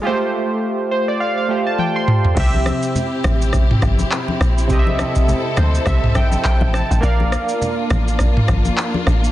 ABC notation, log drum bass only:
X:1
M:4/4
L:1/16
Q:"Swing 16ths" 1/4=103
K:Cmix
V:1 name="Log drum bass" clef=bass
z16 | C,,3 z3 A,,,4 G,,,2 z2 B,,,2 | C,,3 z3 D,,2 C,,3 z2 A,,,2 A,,, | B,,,3 z3 A,,,4 G,,,2 z2 A,,,2 |]